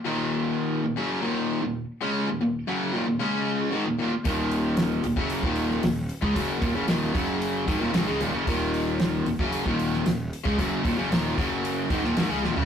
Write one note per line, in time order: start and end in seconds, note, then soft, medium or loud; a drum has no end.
0.05 0.82 D#2 medium
0.05 0.83 A#2 loud
0.05 0.84 D#3 loud
0.83 0.96 D#2 medium
0.83 0.96 A#2 medium
0.96 1.21 F#2 medium
0.96 1.22 C#3 medium
0.96 1.22 F#3 medium
1.21 1.61 D#2 medium
1.21 1.62 A#2 medium
1.21 1.62 D#3 loud
1.62 1.84 D#2 medium
1.62 1.84 A#2 medium
2.01 2.27 C#3 medium
2.01 2.28 G#3 loud
2.01 2.28 C#4 medium
2.28 2.40 D#2 medium
2.28 2.40 A#2 medium
2.41 2.63 D#2 medium
2.41 2.63 A#2 medium
2.67 2.93 F#2 medium
2.67 2.94 C#3 medium
2.67 2.94 F#3 medium
2.93 3.06 D#2 medium
2.93 3.06 A#2 loud
3.07 3.21 D#2 medium
3.07 3.19 A#2 medium
3.19 3.70 C#3 medium
3.19 3.71 G#3 medium
3.19 3.73 C#4 loud
3.71 3.85 G#2 medium
3.71 3.85 D#3 medium
3.85 3.97 D#2 medium
3.85 3.98 A#2 medium
3.99 4.11 D#2 medium
3.99 4.12 A#2 loud
4.12 muted overdriven electric guitar stroke medium
4.24 5.01 D#1 medium
4.24 5.03 D#2 medium
4.24 5.03 A#2 medium
4.24 5.04 D#3 medium
4.24 kick loud
4.24 open hi-hat medium
4.51 open hi-hat soft
4.77 snare loud
4.77 open hi-hat medium
5.04 5.16 D#1 medium
5.04 5.16 D#2 medium
5.04 5.16 A#2 medium
5.04 open hi-hat soft
5.16 5.42 F#1 medium
5.16 5.43 F#2 medium
5.16 5.43 C#3 medium
5.16 5.44 F#3 loud
5.16 kick loud
5.30 open hi-hat medium
5.43 5.81 D#1 medium
5.43 5.81 D#2 medium
5.43 5.82 A#2 medium
5.43 5.84 D#3 medium
5.43 kick medium
5.56 open hi-hat soft
5.70 snare soft
5.82 6.09 D#1 medium
5.82 6.05 D#2 medium
5.82 6.05 A#2 medium
5.82 snare loud
5.82 open hi-hat medium
6.09 open hi-hat medium
6.21 6.35 C#2 medium
6.21 6.34 C#3 medium
6.21 6.35 G#3 medium
6.21 kick loud
6.34 6.61 F#1 medium
6.34 6.61 F#2 medium
6.34 6.61 C#3 medium
6.34 6.62 F#3 medium
6.34 kick medium
6.34 open hi-hat medium
6.61 6.75 D#1 medium
6.61 6.74 D#2 medium
6.61 6.75 A#2 loud
6.61 kick loud
6.61 open hi-hat medium
6.74 6.88 F#1 medium
6.74 6.87 F#2 medium
6.74 6.87 C#3 medium
6.87 7.14 D#1 medium
6.87 7.13 D#2 medium
6.87 7.14 A#2 medium
6.87 7.14 D#3 medium
6.87 snare medium
6.87 open hi-hat medium
7.14 7.64 F#1 medium
7.14 7.67 F#2 medium
7.14 7.66 C#3 medium
7.14 7.67 F#3 medium
7.14 kick loud
7.14 open hi-hat soft
7.42 open hi-hat medium
7.67 7.80 G#1 medium
7.67 7.80 G#2 medium
7.67 7.81 D#3 medium
7.67 kick loud
7.67 open hi-hat medium
7.80 7.93 D#1 medium
7.80 7.93 D#2 medium
7.80 7.93 A#2 medium
7.93 8.07 G#1 medium
7.93 8.06 G#2 medium
7.93 8.07 D#3 loud
7.93 snare loud
7.93 open hi-hat medium
8.07 8.20 C#2 loud
8.07 8.20 C#3 medium
8.07 8.20 G#3 medium
8.21 8.33 D#1 medium
8.21 8.33 D#2 medium
8.21 8.34 A#2 medium
8.21 open hi-hat soft
8.34 8.47 F#1 medium
8.34 8.47 F#2 medium
8.34 8.47 C#3 medium
8.47 9.23 D#1 medium
8.47 9.26 D#2 medium
8.47 9.26 A#2 loud
8.47 9.26 D#3 loud
8.47 kick loud
8.47 open hi-hat medium
8.74 open hi-hat soft
9.00 snare loud
9.00 open hi-hat medium
9.26 9.38 D#1 medium
9.26 9.39 D#2 medium
9.26 9.40 A#2 medium
9.26 open hi-hat soft
9.39 9.64 F#1 medium
9.39 9.65 F#2 medium
9.39 9.66 C#3 medium
9.39 9.66 F#3 medium
9.39 kick loud
9.52 open hi-hat medium
9.66 10.03 D#1 medium
9.66 10.04 D#2 medium
9.66 10.05 A#2 medium
9.66 10.06 D#3 loud
9.66 kick medium
9.79 open hi-hat medium
9.93 snare soft
10.05 10.30 D#1 medium
10.05 10.27 D#2 medium
10.05 10.27 A#2 medium
10.05 snare loud
10.05 open hi-hat medium
10.33 open hi-hat medium
10.44 10.58 C#2 medium
10.44 10.57 C#3 medium
10.44 10.58 G#3 medium
10.44 kick loud
10.58 10.83 F#1 medium
10.58 10.83 F#2 medium
10.58 10.84 C#3 medium
10.58 10.84 F#3 loud
10.58 kick medium
10.58 open hi-hat medium
10.83 10.97 D#1 medium
10.83 10.97 D#2 loud
10.83 10.97 A#2 loud
10.83 kick medium
10.83 open hi-hat medium
10.97 11.10 F#1 medium
10.97 11.10 F#2 medium
10.97 11.11 C#3 loud
11.11 11.36 D#1 medium
11.11 11.36 D#2 medium
11.11 11.37 A#2 medium
11.11 11.37 D#3 medium
11.11 snare medium
11.11 open hi-hat medium
11.37 11.87 F#1 medium
11.37 11.89 F#2 medium
11.37 11.90 C#3 medium
11.37 11.90 F#3 loud
11.37 kick loud
11.37 open hi-hat medium
11.65 open hi-hat medium
11.90 12.03 G#1 medium
11.90 12.03 G#2 medium
11.90 12.03 D#3 medium
11.90 kick loud
11.90 open hi-hat soft
12.04 12.16 D#1 medium
12.04 12.17 D#2 medium
12.04 12.16 A#2 medium
12.04 snare soft
12.17 12.30 G#1 medium
12.17 12.29 G#2 medium
12.17 12.30 D#3 loud
12.17 snare loud
12.17 open hi-hat medium
12.29 12.43 C#2 medium
12.29 12.42 C#3 medium
12.29 12.43 G#3 medium
12.42 12.56 D#1 medium
12.42 12.55 D#2 medium
12.42 12.56 A#2 loud
12.42 snare medium
12.56 12.65 F#1 medium
12.56 12.65 F#2 medium
12.56 12.65 C#3 loud
12.56 floor tom medium